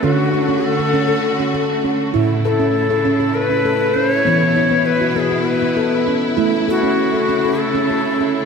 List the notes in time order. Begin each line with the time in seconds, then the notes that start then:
Already playing: A3
0.03 D3 C#4 F#4
0.34 A4
0.49 C#4
0.65 A4
0.79 A4
0.93 C#4
1.08 A4
1.40 C#4
1.54 A4
1.84 C#4
2.14 A2 C#3 E4
2.44 A4 B4
2.60 C#4
2.90 A4
3.05 C#4
3.20 A4
3.35 B4
3.50 C#4
3.66 A4
3.94 C#4 C5
4.12 C#5
4.25 B2 E3 B3
4.56 E4
4.71 B3
4.86 B4
5.01 F#4
5.16 B3 G#4 A4
5.31 F#4
5.47 B4
5.62 B3
5.77 A4
6.07 C#4
6.36 C#3 A3 E4
6.68 F#4 A4
6.83 C#4
7.14 A4
7.29 C#4
7.45 A4
7.60 A4
7.74 C#4
7.90 A4
8.20 C#4